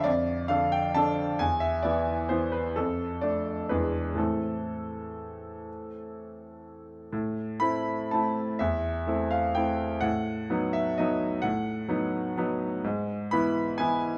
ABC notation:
X:1
M:3/4
L:1/8
Q:1/4=126
K:Am
V:1 name="Grand piano"
d2 f g a2 | ^g e d2 c B | A2 d2 B2 | A6- |
A4 z2 | z2 b2 a2 | e3 f g2 | ^f3 e ^d2 |
^f6 | z2 b2 ^g2 |]
V:2 name="Grand piano"
F,,2 [D,DA]2 [D,DA]2 | E,,2 [E,B,E]2 [E,B,E]2 | F,,2 [A,D]2 [E,,E,^G,D]2 | [A,,E,A,C]6- |
[A,,E,A,C]6 | A,,2 [A,CE]2 [A,CE]2 | E,,2 [A,CE]2 [A,CE]2 | A,,2 [^F,B,^D]2 [F,B,D]2 |
A,,2 [^F,B,^D]2 [F,B,D]2 | ^G,,2 [E,B,E]2 [E,B,E]2 |]